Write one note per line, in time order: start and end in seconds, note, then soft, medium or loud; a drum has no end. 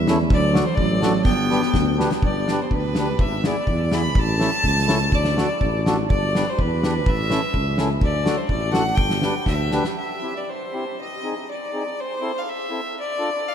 0.00 0.32 E2 medium
0.07 0.18 C#4 medium
0.07 0.18 E4 medium
0.07 0.19 A4 medium
0.07 snare medium
0.29 0.61 D2 loud
0.29 0.63 F#3 medium
0.29 0.65 D5 medium
0.29 kick medium
0.54 0.65 D4 medium
0.54 0.65 F#4 medium
0.54 0.65 A4 medium
0.54 snare medium
0.64 0.78 E3 medium
0.64 0.77 C5 medium
0.75 1.27 A1 medium
0.75 1.24 F#3 medium
0.75 1.23 D5 medium
0.75 kick medium
1.01 1.12 D4 medium
1.01 1.13 F#4 medium
1.01 1.13 A4 medium
1.01 snare medium
1.24 1.57 G1 medium
1.24 1.96 B3 loud
1.24 1.95 G5 medium
1.24 kick medium
1.24 snare soft
1.49 1.61 D4 medium
1.49 1.61 G4 medium
1.49 1.61 B4 medium
1.49 snare soft
1.62 snare soft
1.74 2.06 D2 medium
1.74 kick medium
1.74 snare medium
1.97 2.09 D4 medium
1.97 2.10 G4 medium
1.97 2.10 B4 medium
1.97 snare medium
2.11 snare medium
2.22 2.55 G1 medium
2.22 2.63 D5 medium
2.22 kick medium
2.48 2.60 D4 medium
2.48 2.60 G4 medium
2.48 2.61 B4 medium
2.48 snare medium
2.62 2.73 C5 medium
2.71 3.21 D2 medium
2.71 3.22 B4 medium
2.71 kick medium
2.95 3.08 D4 medium
2.95 snare medium
3.00 3.09 G4 medium
3.00 3.09 B4 medium
3.19 3.51 G#1 medium
3.19 3.45 E5 medium
3.19 kick medium
3.44 3.55 B3 medium
3.44 3.56 E4 medium
3.44 3.56 G#4 medium
3.44 3.95 D5 medium
3.44 snare medium
3.67 4.17 E2 medium
3.67 kick medium
3.91 4.02 B3 medium
3.91 4.02 E4 medium
3.91 4.03 G#4 medium
3.91 4.09 B5 medium
3.91 snare medium
4.09 4.20 B5 medium
4.15 4.47 A1 loud
4.15 5.16 A5 loud
4.15 kick medium
4.38 4.50 C#4 medium
4.38 4.51 E4 medium
4.38 4.50 A4 medium
4.38 snare medium
4.63 5.13 C#2 medium
4.63 kick soft
4.78 snare soft
4.87 4.98 C#4 medium
4.87 4.98 E4 medium
4.87 4.99 A4 medium
4.87 snare medium
5.12 5.44 D2 medium
5.12 5.87 D5 medium
5.12 kick medium
5.25 snare soft
5.37 5.48 D4 medium
5.37 5.47 F#4 medium
5.37 5.48 A4 medium
5.37 snare medium
5.61 6.12 A1 medium
5.61 kick medium
5.85 5.96 D4 medium
5.85 5.97 F#4 medium
5.85 5.97 A4 medium
5.85 snare medium
6.09 6.42 G1 medium
6.09 6.50 D5 medium
6.09 kick medium
6.34 6.45 D4 medium
6.34 6.45 G4 medium
6.34 6.46 B4 medium
6.34 snare medium
6.49 6.61 C5 medium
6.59 7.08 E2 medium
6.59 7.10 B4 medium
6.59 kick medium
6.83 6.94 D4 medium
6.83 6.94 G4 medium
6.83 6.94 B4 medium
6.83 snare medium
7.06 7.38 A1 medium
7.06 7.80 E5 medium
7.06 kick medium
7.29 7.41 C#4 medium
7.29 7.41 E4 medium
7.29 7.41 A4 medium
7.29 snare medium
7.54 8.03 C#2 medium
7.54 kick soft
7.78 7.89 C#4 medium
7.78 7.89 E4 medium
7.78 7.89 A4 medium
7.78 snare medium
8.01 8.33 D2 medium
8.01 8.38 D5 medium
8.01 kick medium
8.24 8.36 D4 medium
8.24 8.36 F#4 medium
8.24 8.37 A4 medium
8.24 snare medium
8.37 8.48 C5 medium
8.48 8.99 A1 medium
8.48 8.73 D5 medium
8.48 kick medium
8.71 8.83 D4 medium
8.71 8.84 F#4 medium
8.71 8.84 A4 medium
8.71 8.96 F#5 loud
8.71 snare medium
8.95 9.30 G1 medium
8.95 9.45 G5 medium
8.95 kick medium
9.10 snare medium
9.22 9.34 D4 medium
9.22 9.34 G4 medium
9.22 9.34 B4 medium
9.22 snare medium
9.46 9.79 D2 medium
9.46 9.94 E5 medium
9.46 kick medium
9.46 snare soft
9.71 9.83 D4 medium
9.71 9.83 G4 medium
9.71 9.84 B4 medium
9.71 snare soft
9.84 snare medium
9.98 10.38 E5 medium
10.22 10.33 C4 medium
10.22 10.34 E4 soft
10.22 10.34 G4 medium
10.37 10.51 D5 medium
10.49 10.98 C5 medium
10.73 10.84 C4 soft
10.73 10.84 E4 soft
10.73 10.84 G4 medium
11.00 11.45 D#5 medium
11.23 11.33 C4 medium
11.23 11.34 D#4 soft
11.23 11.34 G#4 medium
11.50 12.01 D5 medium
11.73 11.83 C4 medium
11.73 11.83 D#4 soft
11.73 11.84 G#4 medium
12.00 12.40 C5 medium
12.20 12.31 C4 medium
12.20 12.32 E4 soft
12.20 12.32 A4 medium
12.38 12.51 F5 medium
12.49 12.96 E5 medium
12.70 12.80 C4 medium
12.70 12.81 E4 soft
12.70 12.81 A4 medium
13.00 13.49 D5 medium
13.19 13.29 D4 soft
13.19 13.30 F4 medium
13.19 13.29 A4 medium
13.48 13.55 F5 medium